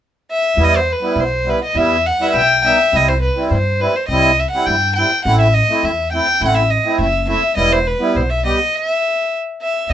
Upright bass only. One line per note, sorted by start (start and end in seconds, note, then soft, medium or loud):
0.57 0.92 E2 medium
1.16 1.51 B1 medium
1.75 2.10 E2 medium
2.34 2.69 B1 medium
2.93 3.28 C2 medium
3.51 3.85 G2 medium
4.08 4.43 C2 medium
4.67 5.02 G2 medium
5.25 5.60 A1 medium
5.83 6.18 E2 medium
6.41 6.76 A1 medium
6.99 7.34 F#1 medium
7.57 7.92 E1 medium
8.15 8.50 B1 medium
9.90 9.93 E2 medium